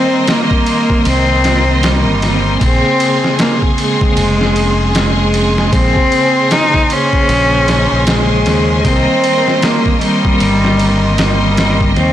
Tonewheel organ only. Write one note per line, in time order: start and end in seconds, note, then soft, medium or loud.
0.00 1.40 D#3 medium
0.00 1.41 G3 medium
0.00 1.43 A#3 medium
0.00 1.44 C4 medium
1.43 1.63 D#3 medium
1.43 1.65 G3 medium
1.43 1.65 A#3 medium
1.48 1.66 F4 medium
1.64 2.56 D#3 loud
1.64 2.57 G3 medium
1.71 2.57 A#3 medium
1.71 2.60 C4 loud
2.58 4.33 A#3 loud
2.58 4.35 C4 medium
2.65 4.37 C#3 medium
2.65 4.38 G#4 loud
4.37 5.68 A#3 medium
4.37 5.69 C4 medium
4.43 5.71 C#4 medium
4.43 5.72 G#4 medium
5.70 8.79 A#3 medium
5.70 8.81 C5 medium
5.76 8.82 C#3 medium
5.76 8.84 G#4 medium
8.81 10.57 D#3 loud
8.81 10.58 G3 medium
8.87 10.60 A#3 medium
8.87 10.61 C4 loud
10.60 11.91 D#3 medium
10.60 11.92 G3 medium
10.66 11.94 A#3 medium
10.66 11.95 C4 medium
11.93 12.13 D#3 medium
11.93 12.13 G3 medium
11.99 12.13 C#3 loud
11.99 12.13 A#3 medium